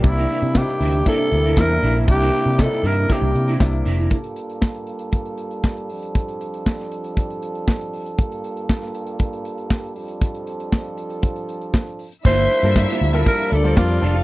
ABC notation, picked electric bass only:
X:1
M:4/4
L:1/16
Q:1/4=118
K:Gdor
V:1 name="Picked electric bass" clef=bass
C,,2 z C,2 z D,,2 z2 D,,2 E,,2 B,,,2 | C,,2 z C,2 z G,,2 z C,, C,2 C,,2 F,,,2 | z16 | z16 |
z16 | z16 | G,,,2 z G,,2 z D,,2 z2 D,,2 F,,2 F,,,2 |]